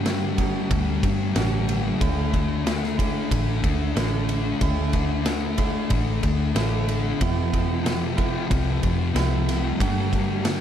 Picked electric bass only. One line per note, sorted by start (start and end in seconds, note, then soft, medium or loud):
0.00 0.53 G2 loud
0.70 0.99 D2 loud
1.03 1.31 G2 medium
1.36 1.92 A1 medium
2.01 3.13 D2 medium
3.31 3.59 A1 loud
3.64 3.92 D2 medium
3.96 4.52 A1 medium
4.61 5.73 D2 loud
5.90 6.19 A1 loud
6.23 6.51 D2 medium
6.55 7.12 A1 medium
7.21 8.33 F2 medium
8.50 8.78 C2 medium
8.83 9.11 F2 medium
9.15 9.71 C2 medium
9.80 10.61 G2 medium